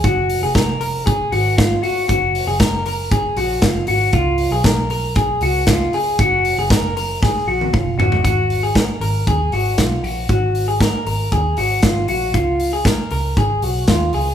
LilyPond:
<<
  \new Staff \with { instrumentName = "Clean electric guitar" } { \time 4/4 \key fis \major \tempo 4 = 117 fis'8. gis'16 ais'8 ais'8 gis'8 fis'8 eis'8 fis'8 | fis'8. gis'16 ais'8 ais'8 gis'8 fis'8 eis'8 fis'8 | eis'8. gis'16 ais'8 ais'8 gis'8 fis'8 eis'8 gis'8 | fis'8. gis'16 ais'8 ais'8 gis'8 fis'8 eis'8 fis'8 |
fis'8. gis'16 ais'8 ais'8 gis'8 fis'8 eis'8 fis'8 | fis'8. gis'16 ais'8 ais'8 gis'8 fis'8 eis'8 fis'8 | eis'8. gis'16 ais'8 ais'8 gis'8 fis'8 eis'8 gis'8 | }
  \new Staff \with { instrumentName = "Fingered electric bass" } { \clef bass \time 4/4 \key fis \major fis,,8. eis,,4.~ eis,,16 gis,,4 r8 | fis,,8. fis,,4.~ fis,,16 ais,,8 fis,,8 gis,,8 | cis,8. b,,4.~ b,,16 cis,4 r8 | fis,,8. fis,,4.~ fis,,16 ais,,8 fis,,8 gis,,8 |
gis,,4~ gis,,16 r16 gis,,8 dis,8 gis,,8 b,,8 ais,,8 | gis,,4~ gis,,16 r16 gis,,8 dis,8 gis,,8 gis,,8 ais,,8 | cis,4~ cis,16 r16 cis,8 gis,,8 b,,8 dis,8 cis,8 | }
  \new DrumStaff \with { instrumentName = "Drums" } \drummode { \time 4/4 <hh bd>8 hho8 <hh bd sn>8 hho8 <hh bd>8 hho8 <hh bd sn>8 hho8 | <hh bd>8 hho8 <hh bd sn>8 hho8 <hh bd>8 hho8 <hh bd sn>8 hho8 | <hh bd>8 hho8 <hh bd sn>8 hho8 <hh bd>8 hho8 <hh bd sn>8 hho8 | <hh bd>8 hho8 <hh bd sn>8 hho8 <bd sn>8. tommh16 <bd toml>8 tomfh16 tomfh16 |
<hh bd>8 hho8 <hh bd sn>8 hho8 <hh bd>8 hho8 <hh bd sn>8 hho8 | <hh bd>8 hho8 <hh bd sn>8 hho8 <hh bd>8 hho8 <hh bd sn>8 hho8 | <hh bd>8 hho8 <hh bd sn>8 hho8 <hh bd>8 hho8 <hh bd sn>8 hho8 | }
>>